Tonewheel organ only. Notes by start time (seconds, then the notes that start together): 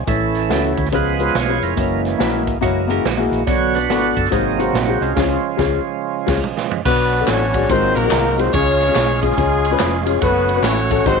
0.07 E3 A3 C#4 E4 A4
0.94 F3 G#3 B3 F4 G#4 B4
1.35 C#5
1.63 C#4 E4 A#4
1.77 E3 G#3 A#3
2.62 E3 G#3 A#3
3.46 D3 F#3 B3 F#4 C#5
3.75 D4 F#4 B4
4.17 A4
4.32 C3 F#3 A#3 C4 D#4 G#4
4.59 C4 D#4 F#4
5.01 G#3 C#4 F4
5.15 C#3 F3 G#3
6.85 F#3 B3 D4
7.70 D#3 G#3 A#3 C4
8.55 G#3 C#4 F4
10.21 A3 C#4 F#4
11.07 D#3 F#3 G#3 C4